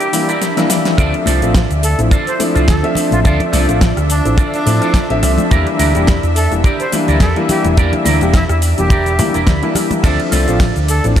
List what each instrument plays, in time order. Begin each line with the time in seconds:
Already playing: analog synth pad D4 E5, flute G4
0.01 closed hi-hat, shaker
0.12 grand piano E3 G3 A#3 D4 E4, open hi-hat, shaker
0.28 clean electric guitar E4 G4 A#4 D5, closed hi-hat, shaker
0.42 snare, closed hi-hat, shaker
0.57 grand piano E3 G3 A#3 D4 E4, snare, closed hi-hat, shaker
0.69 grand piano E3 G3 A#3 D4 E4, snare, open hi-hat, shaker
0.85 snare, closed hi-hat, shaker
0.97 fingered electric bass D2, grand piano F3 A3 C4 D4 E5, analog synth pad D4 E5, clean electric guitar F4 A4 C5 D5, kick, closed hi-hat, shaker
1.14 closed hi-hat
1.26 fingered electric bass C2, clean electric guitar F4 A4 C5 D5, open hi-hat, high conga, shaker
1.42 fingered electric bass A1, grand piano F3 A3 C4 D4 F4, closed hi-hat, shaker
1.54 kick, cross-stick, snare, closed hi-hat, shaker
1.70 fingered electric bass D2, closed hi-hat, shaker
1.83 flute A4, open hi-hat, shaker
1.98 fingered electric bass A1, grand piano F3 A3 C4 D4 E4, closed hi-hat, shaker
2.11 clean electric guitar F4 A4 C5 D5, kick, closed hi-hat, shaker
2.27 flute C5, closed hi-hat, shaker
2.39 grand piano F3 A3 C4 D4 E4, open hi-hat, high conga, shaker
2.55 fingered electric bass C2, clean electric guitar F4 A4 C5 D5, closed hi-hat, shaker
2.68 fingered electric bass D2, flute A4, kick, snare, closed hi-hat, shaker
2.83 grand piano F3 A3 C4 D4 E5, closed hi-hat
2.95 open hi-hat, low conga, shaker
3.11 fingered electric bass A1, flute F4, closed hi-hat, high conga, shaker
3.24 fingered electric bass D2, grand piano F3 A3 C4 D4 E5, clean electric guitar F4 A4 C5 D5, flute F4, kick, closed hi-hat, shaker
3.40 closed hi-hat, low conga
3.52 fingered electric bass C2, clean electric guitar F4 A4 C5 D5, snare, open hi-hat, high conga, shaker
3.68 fingered electric bass A1, grand piano F3 A3 C4 D4 F4, closed hi-hat, shaker
3.81 kick, cross-stick, snare, closed hi-hat, shaker
3.97 fingered electric bass D2, cross-stick, closed hi-hat, shaker
4.10 flute D4, open hi-hat, shaker
4.24 fingered electric bass A1, grand piano F3 A3 C4 D4 E4, closed hi-hat, shaker
4.37 clean electric guitar F4 A4 C5 D5, kick, closed hi-hat, shaker
4.53 flute D4, closed hi-hat, shaker
4.66 fingered electric bass A2, grand piano F3 A3 C4 D4 E4, open hi-hat, high conga, shaker
4.81 clean electric guitar F4 A4 C5 D5, closed hi-hat, shaker
4.94 kick, snare, closed hi-hat, shaker
5.09 fingered electric bass A1, grand piano F3 A3 C4 D4 E5, closed hi-hat
5.23 fingered electric bass C2, cross-stick, open hi-hat, low conga, shaker
5.38 closed hi-hat, high conga, low conga, shaker
5.51 fingered electric bass E2, grand piano E3 G3 A#3 D4 E4, clean electric guitar E4 G4 A#4 D5, kick, closed hi-hat, shaker
5.67 closed hi-hat
5.79 fingered electric bass D2, clean electric guitar E4 G4 A#4 D5, open hi-hat, high conga, shaker
5.95 fingered electric bass E1, grand piano E3 G3 A#3 D4 G4, closed hi-hat, shaker
6.07 kick, cross-stick, snare, closed hi-hat, shaker
6.23 fingered electric bass E2, closed hi-hat, shaker
6.36 flute A4, open hi-hat, shaker
6.51 fingered electric bass E1, grand piano E3 G3 A#3 D4 E4, closed hi-hat, shaker
6.64 clean electric guitar E4 G4 A#4 D5, kick, closed hi-hat, shaker
6.80 flute C5, closed hi-hat, shaker
6.92 grand piano E3 G3 A#3 D4 E4, open hi-hat, high conga, shaker
7.08 fingered electric bass D2, clean electric guitar E4 G4 A#4 D5, closed hi-hat, shaker
7.20 fingered electric bass E2, flute A4, kick, snare, closed hi-hat, shaker
7.36 grand piano E3 G3 A#3 D4 E4, closed hi-hat
7.49 flute G4, open hi-hat, low conga, shaker
7.64 fingered electric bass E1, closed hi-hat, high conga, shaker
7.77 fingered electric bass E2, grand piano E3 G3 A#3 D4 E4, clean electric guitar E4 G4 A#4 D5, kick, closed hi-hat, shaker
7.93 closed hi-hat, low conga
8.05 fingered electric bass D2, clean electric guitar E4 G4 A#4 D5, snare, open hi-hat, high conga, shaker
8.21 fingered electric bass E1, grand piano E3 G3 A#3 D4 G4, closed hi-hat, shaker
8.34 flute E4, kick, cross-stick, snare, closed hi-hat, shaker
8.49 fingered electric bass E2, flute E4, cross-stick, closed hi-hat, shaker
8.62 open hi-hat, shaker
8.78 fingered electric bass E1, grand piano E3 G3 A#3 D4 E4, flute G4, closed hi-hat, shaker
8.90 clean electric guitar E4 G4 A#4 D5, kick, closed hi-hat, shaker
9.06 closed hi-hat, shaker
9.19 fingered electric bass D2, grand piano E3 G3 A#3 D4 E4, open hi-hat, high conga, shaker
9.34 fingered electric bass E1, clean electric guitar E4 G4 A#4 D5, closed hi-hat, shaker
9.47 fingered electric bass D2, kick, snare, closed hi-hat, shaker
9.62 grand piano E3 G3 A#3 D4 E4, closed hi-hat
9.75 grand piano E3 G3 A#3 D4 E4, cross-stick, open hi-hat, low conga, shaker
9.91 closed hi-hat, high conga, low conga, shaker
10.03 fingered electric bass D2, grand piano F3 A3 C4 D4 E5, analog synth pad D4 D5, clean electric guitar F4 A4 C5 D5, kick, closed hi-hat, ride, shaker
10.20 closed hi-hat
10.31 fingered electric bass C2, clean electric guitar F4 A4 C5 D5, open hi-hat, high conga, shaker
10.48 fingered electric bass A1, grand piano F3 A3 C4 D4 F4, closed hi-hat, shaker
10.60 kick, cross-stick, snare, closed hi-hat, ride, shaker
10.76 fingered electric bass D2, closed hi-hat, shaker
10.88 flute A4, open hi-hat, shaker
11.04 fingered electric bass A1, grand piano F3 A3 C4 D4 E4, closed hi-hat, shaker
11.16 clean electric guitar F4 A4 C5, kick, closed hi-hat, ride